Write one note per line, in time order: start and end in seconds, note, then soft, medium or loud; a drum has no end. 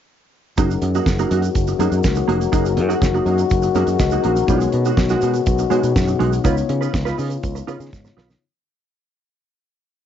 0.57 0.75 F#1 loud
0.57 8.38 D#3 medium
0.57 1.33 F#3 medium
0.57 0.73 A#3 medium
0.57 4.45 A#3 medium
0.57 1.33 C#4 medium
0.57 4.45 C#4 medium
0.57 1.34 D#4 medium
0.57 0.70 D#4 medium
0.57 0.70 F#4 medium
0.57 6.41 F#4 medium
0.57 1.34 G#4 medium
0.57 1.34 A#4 medium
0.57 kick loud
0.57 closed hi-hat medium
0.57 shaker medium
0.71 muted clean electric guitar stroke soft
0.71 closed hi-hat soft
0.71 shaker soft
0.82 0.99 F#2 loud
0.82 muted clean electric guitar stroke soft
0.82 closed hi-hat medium
0.95 1.06 A#3 soft
0.95 1.07 D#4 medium
0.95 1.07 F#4 medium
0.95 closed hi-hat soft
0.95 shaker medium
1.06 1.23 F#1 medium
1.06 muted clean electric guitar stroke soft
1.06 kick loud
1.06 snare loud
1.06 shaker medium
1.19 1.30 A#3 medium
1.19 1.31 D#4 medium
1.19 1.31 F#4 medium
1.19 closed hi-hat soft
1.19 shaker medium
1.31 1.48 F#2 loud
1.31 1.43 A#3 medium
1.31 1.43 D#4 medium
1.31 1.43 F#4 medium
1.31 closed hi-hat medium
1.31 shaker medium
1.42 muted clean electric guitar stroke soft
1.42 closed hi-hat soft
1.42 shaker medium
1.55 1.72 F#1 medium
1.55 kick loud
1.55 closed hi-hat medium
1.55 shaker medium
1.67 muted clean electric guitar stroke soft
1.67 closed hi-hat soft
1.67 shaker medium
1.79 1.88 F#2 medium
1.79 2.36 F#3 medium
1.79 1.95 A#3 medium
1.79 2.36 C#4 medium
1.79 2.37 D#4 medium
1.79 1.92 D#4 medium
1.79 1.91 F#4 loud
1.79 2.37 G#4 medium
1.79 2.37 A#4 medium
1.79 closed hi-hat medium
1.79 shaker medium
1.92 2.00 F#2 medium
1.92 muted clean electric guitar stroke medium
1.92 closed hi-hat soft
1.92 shaker soft
2.04 2.21 C#2 medium
2.04 kick loud
2.04 snare loud
2.04 shaker medium
2.16 muted clean electric guitar stroke medium
2.16 closed hi-hat soft
2.16 shaker medium
2.28 2.45 F1 medium
2.28 2.43 A#3 medium
2.28 2.40 D#4 medium
2.28 2.39 F#4 medium
2.28 closed hi-hat medium
2.40 muted clean electric guitar stroke soft
2.40 closed hi-hat soft
2.40 shaker medium
2.52 2.78 F#1 loud
2.52 3.29 F#3 medium
2.52 2.68 A#3 medium
2.52 3.29 C#4 medium
2.52 2.65 D#4 medium
2.52 3.29 D#4 medium
2.52 2.64 F#4 medium
2.52 3.29 G#4 medium
2.52 3.30 A#4 medium
2.52 kick loud
2.52 closed hi-hat medium
2.52 shaker medium
2.65 muted clean electric guitar stroke soft
2.65 closed hi-hat soft
2.65 shaker medium
2.77 2.94 F#2 loud
2.77 muted clean electric guitar stroke soft
2.77 closed hi-hat medium
2.89 3.01 A#3 soft
2.89 3.01 D#4 soft
2.89 3.01 F#4 medium
2.89 closed hi-hat soft
2.89 shaker medium
3.02 3.19 F#1 medium
3.02 muted clean electric guitar stroke soft
3.02 kick loud
3.02 snare loud
3.02 shaker medium
3.14 3.26 A#3 medium
3.14 3.27 D#4 medium
3.14 3.27 F#4 medium
3.14 closed hi-hat soft
3.14 shaker medium
3.26 3.43 F#2 loud
3.26 3.39 A#3 medium
3.26 3.39 D#4 medium
3.26 3.38 F#4 medium
3.26 closed hi-hat medium
3.26 shaker medium
3.38 muted clean electric guitar stroke medium
3.38 closed hi-hat soft
3.38 shaker medium
3.50 3.68 F#1 loud
3.50 kick loud
3.50 closed hi-hat medium
3.50 shaker medium
3.62 muted clean electric guitar stroke soft
3.62 closed hi-hat soft
3.62 shaker medium
3.74 3.84 F#2 medium
3.74 4.32 F#3 medium
3.74 3.91 A#3 loud
3.74 3.99 C#4 medium
3.74 3.99 D#4 medium
3.74 3.87 D#4 medium
3.74 3.86 F#4 loud
3.74 4.00 G#4 medium
3.74 4.00 A#4 medium
3.74 closed hi-hat medium
3.74 shaker medium
3.87 3.96 F#2 medium
3.87 muted clean electric guitar stroke soft
3.87 closed hi-hat soft
3.87 shaker soft
4.00 4.17 C#2 medium
4.00 4.23 F#4 soft
4.00 4.23 D#5 medium
4.00 muted clean electric guitar stroke soft
4.00 kick loud
4.00 snare loud
4.00 shaker medium
4.11 4.24 A#3 medium
4.11 4.24 D#4 medium
4.11 4.24 F#4 medium
4.11 closed hi-hat soft
4.11 shaker medium
4.23 4.41 A#1 medium
4.23 4.40 A#3 medium
4.23 4.71 C#4 medium
4.23 4.37 D#4 medium
4.23 4.36 F#4 loud
4.23 4.70 A#4 medium
4.23 closed hi-hat medium
4.36 muted clean electric guitar stroke soft
4.36 closed hi-hat medium
4.36 shaker medium
4.47 4.65 B1 loud
4.47 5.24 B2 medium
4.47 6.43 G#3 medium
4.47 4.69 G#3 medium
4.47 5.24 B3 medium
4.47 6.43 B3 medium
4.47 5.24 D#4 medium
4.47 4.61 D#4 medium
4.47 4.61 F#4 medium
4.47 5.24 G#4 medium
4.47 5.24 C#5 medium
4.47 kick loud
4.47 closed hi-hat medium
4.47 shaker medium
4.61 muted clean electric guitar stroke medium
4.61 closed hi-hat soft
4.61 shaker medium
4.72 4.90 B2 loud
4.72 muted clean electric guitar stroke soft
4.72 closed hi-hat medium
4.85 4.97 G#3 soft
4.85 4.98 D#4 soft
4.85 4.97 F#4 medium
4.85 closed hi-hat soft
4.85 shaker medium
4.97 5.14 B1 medium
4.97 muted clean electric guitar stroke soft
4.97 kick loud
4.97 snare loud
4.97 shaker medium
5.09 5.21 G#3 medium
5.09 5.22 D#4 medium
5.09 5.22 F#4 medium
5.09 snare soft
5.09 closed hi-hat soft
5.09 shaker medium
5.21 5.39 B2 medium
5.21 5.34 G#3 medium
5.21 5.34 D#4 medium
5.21 5.33 F#4 medium
5.21 closed hi-hat medium
5.21 shaker medium
5.33 muted clean electric guitar stroke soft
5.33 closed hi-hat soft
5.33 shaker medium
5.46 5.64 B1 loud
5.46 kick loud
5.46 closed hi-hat medium
5.46 shaker medium
5.58 muted clean electric guitar stroke soft
5.58 closed hi-hat soft
5.58 shaker medium
5.69 6.27 B2 medium
5.69 5.80 B2 medium
5.69 5.86 G#3 medium
5.69 6.28 B3 medium
5.69 6.28 D#4 medium
5.69 5.83 D#4 medium
5.69 5.82 F#4 medium
5.69 6.28 G#4 medium
5.69 6.28 C#5 medium
5.69 closed hi-hat medium
5.69 shaker soft
5.83 5.92 B2 medium
5.83 muted clean electric guitar stroke soft
5.83 closed hi-hat soft
5.83 shaker medium
5.96 6.13 F#2 loud
5.96 kick loud
5.96 snare loud
5.96 shaker medium
6.08 muted clean electric guitar stroke soft
6.08 closed hi-hat soft
6.08 shaker medium
6.19 6.37 B1 loud
6.19 6.35 G#3 medium
6.19 6.31 D#4 medium
6.19 6.31 F#4 medium
6.19 closed hi-hat medium
6.32 muted clean electric guitar stroke soft
6.32 closed hi-hat medium
6.32 shaker medium
6.43 6.62 C#2 loud
6.43 7.20 C#3 medium
6.43 7.21 B3 medium
6.43 8.40 B3 medium
6.43 8.40 C#4 medium
6.43 6.60 D#4 medium
6.43 7.21 D#4 medium
6.43 6.51 E4 medium
6.43 8.40 F4 medium
6.43 6.56 F4 medium
6.43 6.56 B4 medium
6.43 7.22 C#5 loud
6.43 kick loud
6.43 closed hi-hat medium
6.43 shaker medium
6.51 7.24 F4 medium
6.57 muted clean electric guitar stroke soft
6.57 closed hi-hat soft
6.57 shaker medium
6.69 6.86 C#3 loud
6.69 muted clean electric guitar stroke soft
6.69 closed hi-hat medium
6.81 6.93 D#4 soft
6.81 6.93 F4 soft
6.81 6.93 B4 medium
6.81 closed hi-hat soft
6.81 shaker medium
6.94 7.11 C#2 medium
6.94 muted clean electric guitar stroke soft
6.94 kick loud
6.94 snare loud
6.94 shaker medium
7.05 7.17 D#4 medium
7.05 7.17 F4 medium
7.05 7.18 B4 medium
7.05 snare soft
7.05 closed hi-hat soft
7.05 shaker medium
7.18 7.36 C#3 medium
7.18 7.30 D#4 medium
7.18 7.30 F4 medium
7.18 7.29 B4 medium
7.18 open hi-hat medium
7.18 shaker medium
7.30 muted clean electric guitar stroke soft
7.30 closed hi-hat soft
7.30 shaker medium
7.43 7.61 C#2 loud
7.43 kick loud
7.43 closed hi-hat medium
7.43 shaker medium
7.55 muted clean electric guitar stroke soft
7.55 closed hi-hat soft
7.55 shaker medium
7.67 8.25 C#3 medium
7.67 7.76 C#3 medium
7.67 8.25 B3 medium
7.67 7.83 D#4 medium
7.67 8.26 D#4 medium
7.67 7.74 E4 medium
7.67 7.80 F4 medium
7.67 7.79 B4 medium
7.67 8.26 C#5 medium
7.67 closed hi-hat medium
7.67 shaker medium
7.74 8.28 F4 medium
7.80 7.89 C#3 medium
7.80 muted clean electric guitar stroke soft
7.80 closed hi-hat soft
7.80 shaker medium
7.93 8.10 G#2 medium
7.93 kick loud
7.93 snare medium
7.93 shaker medium
8.04 muted clean electric guitar stroke medium
8.04 snare medium
8.04 shaker medium
8.17 8.34 B1 medium
8.17 8.32 D#4 medium
8.17 8.29 F4 medium
8.17 8.28 B4 medium
8.17 snare medium
8.29 muted clean electric guitar stroke soft
8.29 snare medium
8.29 shaker soft